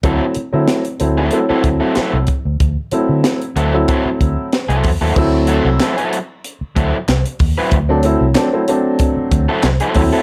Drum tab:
CC |----------------|----------------|x---------------|----------------|
HH |x-x-xxx-x-x-x-x-|x-x-xxx-x-x-xxo-|--x-xxx-x-x-xxo-|x-x-x-x-x-x-xxo-|
CP |----------------|----------------|----x-------x---|----x-------x---|
SD |----o-------o---|----o-------o---|----o-------o---|----o-------o---|
BD |o---------o---o-|o-------o-o---o-|o---------o---o-|o-------o-o---o-|